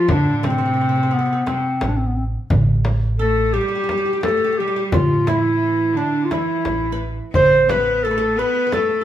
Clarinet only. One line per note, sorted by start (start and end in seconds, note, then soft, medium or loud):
0.00 0.13 F4 medium
0.11 0.36 D4 medium
0.36 0.47 D4 medium
0.46 1.15 C4 medium
1.13 1.49 B3 medium
1.47 1.89 C4 medium
1.88 1.99 D4 medium
1.97 2.08 C4 medium
2.07 2.17 B3 medium
2.16 2.25 C4 medium
3.19 3.55 A4 medium
3.53 4.23 G4 medium
4.24 4.60 A4 medium
4.58 4.86 G4 medium
4.86 4.94 G4 medium
4.93 5.30 F4 medium
5.28 5.98 E4 medium
5.97 6.26 D4 medium
6.25 6.33 F4 medium
6.31 7.09 E4 medium
7.35 7.71 C5 loud
7.70 8.05 B4 medium
8.04 8.40 A4 medium
8.39 8.73 B4 medium
8.74 9.04 A4 medium